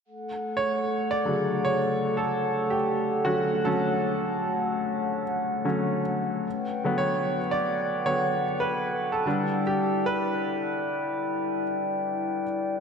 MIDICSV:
0, 0, Header, 1, 3, 480
1, 0, Start_track
1, 0, Key_signature, 2, "major"
1, 0, Tempo, 800000
1, 34, Time_signature, 4, 2, 24, 8
1, 7681, End_track
2, 0, Start_track
2, 0, Title_t, "Glass harmonica"
2, 0, Program_c, 0, 92
2, 29, Note_on_c, 0, 78, 52
2, 33, Note_on_c, 0, 69, 44
2, 34, Note_on_c, 0, 57, 48
2, 1934, Note_off_c, 0, 69, 0
2, 1951, Note_on_c, 0, 73, 46
2, 3847, Note_off_c, 0, 78, 0
2, 3850, Note_off_c, 0, 57, 0
2, 3853, Note_off_c, 0, 73, 0
2, 3863, Note_on_c, 0, 78, 51
2, 3868, Note_on_c, 0, 71, 49
2, 3868, Note_on_c, 0, 79, 53
2, 5532, Note_off_c, 0, 78, 0
2, 5534, Note_off_c, 0, 71, 0
2, 5555, Note_on_c, 0, 64, 54
2, 5556, Note_on_c, 0, 74, 44
2, 7681, Note_off_c, 0, 64, 0
2, 7681, Note_off_c, 0, 74, 0
2, 7681, Note_off_c, 0, 79, 0
2, 7681, End_track
3, 0, Start_track
3, 0, Title_t, "Grand piano"
3, 0, Program_c, 1, 0
3, 161, Control_c, 1, 64, 127
3, 340, Note_on_c, 1, 73, 69
3, 665, Note_on_c, 1, 74, 71
3, 677, Note_off_c, 1, 73, 0
3, 750, Note_on_c, 1, 50, 39
3, 754, Note_on_c, 1, 54, 36
3, 755, Note_on_c, 1, 49, 42
3, 988, Note_on_c, 1, 73, 77
3, 999, Note_off_c, 1, 74, 0
3, 1071, Note_off_c, 1, 50, 0
3, 1073, Note_off_c, 1, 54, 0
3, 1074, Note_off_c, 1, 49, 0
3, 1303, Note_on_c, 1, 69, 64
3, 1320, Note_off_c, 1, 73, 0
3, 1622, Note_on_c, 1, 67, 62
3, 1638, Note_off_c, 1, 69, 0
3, 1925, Note_off_c, 1, 67, 0
3, 1948, Note_on_c, 1, 66, 68
3, 1950, Note_on_c, 1, 50, 37
3, 1956, Note_on_c, 1, 54, 34
3, 1956, Note_on_c, 1, 61, 40
3, 2168, Note_off_c, 1, 50, 0
3, 2171, Note_off_c, 1, 54, 0
3, 2171, Note_off_c, 1, 61, 0
3, 2190, Note_on_c, 1, 69, 72
3, 2191, Note_on_c, 1, 50, 46
3, 2198, Note_off_c, 1, 66, 0
3, 2198, Note_on_c, 1, 54, 41
3, 2200, Note_on_c, 1, 61, 49
3, 3128, Note_off_c, 1, 69, 0
3, 3379, Note_off_c, 1, 50, 0
3, 3381, Note_off_c, 1, 54, 0
3, 3383, Note_off_c, 1, 61, 0
3, 3388, Note_on_c, 1, 50, 39
3, 3390, Note_on_c, 1, 54, 35
3, 3392, Note_on_c, 1, 61, 42
3, 3607, Note_off_c, 1, 50, 0
3, 3608, Note_off_c, 1, 54, 0
3, 3609, Note_off_c, 1, 61, 0
3, 3881, Control_c, 1, 64, 0
3, 3978, Control_c, 1, 64, 127
3, 4106, Note_on_c, 1, 50, 43
3, 4110, Note_on_c, 1, 54, 39
3, 4115, Note_on_c, 1, 59, 50
3, 4187, Note_on_c, 1, 73, 77
3, 4429, Note_off_c, 1, 50, 0
3, 4431, Note_off_c, 1, 54, 0
3, 4434, Note_off_c, 1, 59, 0
3, 4508, Note_on_c, 1, 74, 73
3, 4520, Note_off_c, 1, 73, 0
3, 4808, Note_off_c, 1, 74, 0
3, 4834, Note_on_c, 1, 50, 37
3, 4835, Note_on_c, 1, 73, 78
3, 4836, Note_on_c, 1, 54, 35
3, 4839, Note_on_c, 1, 59, 41
3, 5050, Note_off_c, 1, 50, 0
3, 5051, Note_off_c, 1, 54, 0
3, 5053, Note_off_c, 1, 59, 0
3, 5132, Note_off_c, 1, 73, 0
3, 5160, Note_on_c, 1, 71, 66
3, 5455, Note_off_c, 1, 71, 0
3, 5473, Note_on_c, 1, 69, 64
3, 5553, Note_on_c, 1, 50, 40
3, 5559, Note_on_c, 1, 55, 37
3, 5561, Control_c, 1, 64, 0
3, 5561, Note_on_c, 1, 62, 47
3, 5665, Control_c, 1, 64, 127
3, 5771, Note_off_c, 1, 69, 0
3, 5801, Note_on_c, 1, 67, 69
3, 6037, Note_on_c, 1, 71, 76
3, 6044, Note_off_c, 1, 67, 0
3, 6972, Note_off_c, 1, 71, 0
3, 7450, Note_off_c, 1, 50, 0
3, 7453, Note_off_c, 1, 55, 0
3, 7454, Note_off_c, 1, 62, 0
3, 7681, End_track
0, 0, End_of_file